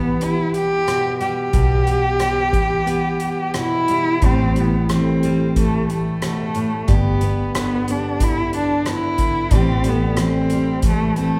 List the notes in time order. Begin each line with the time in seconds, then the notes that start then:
Already playing: B1 E3 G3 B3 G4 B4
0.21 B3 E4 G4, closed hi-hat
0.54 G4, closed hi-hat
0.87 B2, cross-stick, closed hi-hat
1.20 G3 G4, closed hi-hat
1.53 B1 B2 B3, kick, closed hi-hat
1.87 B3, closed hi-hat
2.20 G3, cross-stick, closed hi-hat
2.52 E3, kick, closed hi-hat
2.86 B3, closed hi-hat
3.20 closed hi-hat
3.54 B2 E4, cross-stick, closed hi-hat
3.88 G3, closed hi-hat
4.22 A1 A2 E3 G3 C4, kick, closed hi-hat
4.26 G4
4.56 G3 B3 E4, closed hi-hat
4.78 G4
4.89 E3 C4, cross-stick, closed hi-hat
4.99 A4
5.23 G3 G4, closed hi-hat
5.56 E3 A3, kick, closed hi-hat
5.90 A3, closed hi-hat
6.22 B2, cross-stick, closed hi-hat
6.55 A2, closed hi-hat
6.87 G1 G2 G4, kick, closed hi-hat
6.92 B3
7.21 B3, closed hi-hat
7.55 D3 B3, cross-stick, closed hi-hat
7.88 B3 D4 G4, closed hi-hat
8.20 D3 E4, kick, closed hi-hat
8.53 D4, closed hi-hat
8.82 D4, closed hi-hat
8.86 B3 E4, cross-stick
9.18 D3, kick, closed hi-hat
9.51 A1 A2 E3 G3 C4, kick, closed hi-hat
9.55 G4
9.84 G3 A4, closed hi-hat
9.89 B3
10.07 D5
10.17 E3, cross-stick, closed hi-hat
10.21 C4
10.50 G3, closed hi-hat
10.82 E3, kick, closed hi-hat
10.87 A3
11.16 A3 C4, closed hi-hat